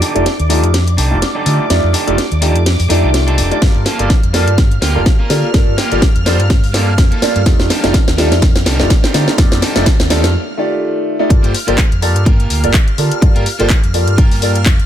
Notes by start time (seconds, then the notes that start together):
Already playing: D6
0.01 D4 D#4 G4 A4, open hi-hat
0.15 F1 A3 D#4 F4 G4 D5, closed hi-hat
0.26 snare, closed hi-hat
0.40 D#2, closed hi-hat
0.49 A3 D4 D#4 F4 G4 A4 D5, open hi-hat
0.64 F2, closed hi-hat
0.73 muted clean electric guitar stroke, snare, closed hi-hat
0.88 closed hi-hat
0.97 C2 D4 D#4 G4 A4, open hi-hat
1.11 F1 A3 D#4 F4 G4 D5
1.22 snare, closed hi-hat
1.35 D4 D#4 G4 A4
1.46 D3 A3 D#4 F4 G4 D5, open hi-hat
1.70 F2 A3 D#4 F4 G4 D5, snare, closed hi-hat
1.83 F2
1.93 D4 D#4 G4 A4, open hi-hat
2.07 F1 A3 D#4 F4 G4 D5, closed hi-hat
2.18 snare, closed hi-hat
2.32 D#2, closed hi-hat
2.41 A3 D4 D#4 F4 G4 A4 D5, open hi-hat
2.55 F2, closed hi-hat
2.65 muted clean electric guitar stroke, snare, closed hi-hat
2.79 F2, open hi-hat
2.89 F2 D#3 A3 D4 D#4 F4 G4 A4 D5, open hi-hat
3.03 C2
3.14 snare, closed hi-hat
3.27 D4 D#4 G4 A4, closed hi-hat
3.38 F1, open hi-hat
3.51 A3 D#4 F4 G4 D5, closed hi-hat
3.61 G2 A#3 F4 F6, kick, snare, closed hi-hat
3.75 G2
3.85 A#3 F4 A4, snare, open hi-hat
3.99 G1 A#3 F4 G4 A4 D5, closed hi-hat
4.10 kick, snare, closed hi-hat
4.23 F2, closed hi-hat
4.33 A#3 F4 G4 A4 D5, snare, open hi-hat
4.47 G2, closed hi-hat
4.57 muted clean electric guitar stroke, kick, snare, closed hi-hat
4.72 closed hi-hat
4.81 D2 A#3 F4 G4, snare, open hi-hat
4.95 G1 A#3 F4 G4 A4 D5
5.06 kick, snare, closed hi-hat
5.19 A#3 F4 A#4
5.29 D3 A#3 F4 G4 A4 D5, snare, open hi-hat
5.54 G2 A#3 F4 G4 A4 D5, kick, snare, closed hi-hat
5.67 G2
5.77 A#3 F4 G4, snare, open hi-hat
5.91 G1 A#3 F4 G4 A4 D5, closed hi-hat
6.02 kick, snare, closed hi-hat
6.15 F2, closed hi-hat
6.26 A#3 F4 G4 A4 C5 D5, snare, open hi-hat
6.40 G2, closed hi-hat
6.50 kick, snare, closed hi-hat
6.64 G2, open hi-hat
6.73 A#3 F4 G4 A4 D5, snare, open hi-hat
6.98 F2, kick, snare, closed hi-hat
7.11 A#3 F4 A4, closed hi-hat
7.22 A#3 F4 G4 A4 D5, muted fingered electric bass stroke, snare, open hi-hat
7.35 G2, closed hi-hat
7.46 F2 A3 D#4 F4 G4, kick, snare, closed hi-hat
7.60 F2, snare
7.69 D4 D#4 G4 A4, snare, open hi-hat
7.83 F1 A3 D#4 F4 G4 D5, snare, closed hi-hat
7.94 kick, snare, closed hi-hat
8.08 D#2, snare, closed hi-hat
8.17 A3 D4 D#4 F4 G4 A4 D5, snare, open hi-hat
8.32 F2, snare, closed hi-hat
8.42 kick, snare, closed hi-hat
8.56 snare, closed hi-hat
8.65 C2 D4 D#4 G4 A4, snare, open hi-hat
8.79 F1 A3 D#4 F4 G4 D5, snare
8.90 kick, snare, closed hi-hat
9.03 D4 D#4 G4 C5, snare
9.14 D3 A3 D#4 F4 G4 D5, snare, open hi-hat
9.28 snare
9.38 F2 A3 D#4 F4 G4 D5, kick, snare, closed hi-hat
9.52 F2, snare, closed hi-hat
9.62 D4 D#4 G4 A4, snare, open hi-hat
9.75 F1 A3 D#4 F4 G4 D5, snare, closed hi-hat
9.86 kick, snare, closed hi-hat
10.00 D#2, snare, closed hi-hat
10.10 A3 D4 D#4 F4 G4 A4 D5, snare, open hi-hat
10.24 F2, snare, closed hi-hat
10.57 D#3 A3 F4 G4 D5
11.19 A3 D#4 F4 G4 D5
11.30 G2 F6, muted clean electric guitar stroke, kick, closed hi-hat
11.43 G2 A#3 F4 G4 C5, closed hi-hat
11.54 open hi-hat
11.67 G1 A#3 F4 G4 A4 C5 D5, closed hi-hat
11.78 kick, clap, closed hi-hat
11.92 F2, closed hi-hat
12.01 A#3 F4 G4 A4 D5, muted clean electric guitar stroke, open hi-hat
12.15 G2, muted clean electric guitar stroke, closed hi-hat
12.25 A#3 F4 G4 A#4, kick, closed hi-hat
12.40 closed hi-hat
12.50 D2, open hi-hat
12.63 G1 A#3 F4 G4 A4 D5, closed hi-hat
12.74 kick, clap, closed hi-hat
12.88 closed hi-hat
12.98 D3 A#3 F4 G4 A4 D5, open hi-hat
13.12 closed hi-hat
13.21 G2 A#3 F4 G4 A4 D5, muted clean electric guitar stroke, kick, closed hi-hat
13.35 G2 A#3 F4 G4 A#4, closed hi-hat
13.46 open hi-hat
13.59 G1 A#3 F4 G4 A4 C5 D5, closed hi-hat
13.70 kick, clap, closed hi-hat
13.84 F2, closed hi-hat
13.94 A#3 F4 G4 A4 D5, muted clean electric guitar stroke, open hi-hat
14.07 G2, muted clean electric guitar stroke, closed hi-hat
14.17 A#3 F4 G4 A#4, kick, closed hi-hat
14.31 G2, open hi-hat
14.42 A#3 F4 G4 A4 D5, open hi-hat
14.55 closed hi-hat
14.66 F2, kick, clap, closed hi-hat
14.79 closed hi-hat